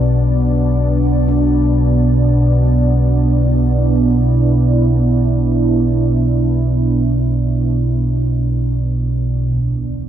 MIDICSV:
0, 0, Header, 1, 4, 480
1, 0, Start_track
1, 0, Key_signature, 2, "minor"
1, 0, Tempo, 500000
1, 9685, End_track
2, 0, Start_track
2, 0, Title_t, "Ambient pad"
2, 0, Program_c, 0, 92
2, 0, Note_on_c, 0, 59, 74
2, 0, Note_on_c, 0, 62, 68
2, 0, Note_on_c, 0, 66, 70
2, 0, Note_on_c, 0, 74, 73
2, 1928, Note_on_c, 0, 64, 68
2, 2262, Note_off_c, 0, 66, 0
2, 9137, Note_off_c, 0, 59, 0
2, 9143, Note_off_c, 0, 62, 0
2, 9151, Note_off_c, 0, 64, 0
2, 9154, Note_off_c, 0, 74, 0
2, 9685, End_track
3, 0, Start_track
3, 0, Title_t, "Kettle gongs"
3, 0, Program_c, 1, 14
3, 0, Note_on_c, 1, 57, 44
3, 1229, Note_on_c, 1, 62, 56
3, 3493, Note_off_c, 1, 57, 0
3, 8009, Note_off_c, 1, 62, 0
3, 9145, Note_on_c, 1, 38, 59
3, 9685, Note_off_c, 1, 38, 0
3, 9685, End_track
4, 0, Start_track
4, 0, Title_t, "Synth drone"
4, 0, Program_c, 2, 95
4, 0, Note_on_c, 2, 35, 70
4, 0, Note_on_c, 2, 47, 74
4, 9133, Note_off_c, 2, 35, 0
4, 9138, Note_off_c, 2, 47, 0
4, 9145, Note_on_c, 2, 35, 73
4, 9150, Note_on_c, 2, 47, 79
4, 9685, Note_off_c, 2, 35, 0
4, 9685, Note_off_c, 2, 47, 0
4, 9685, End_track
0, 0, End_of_file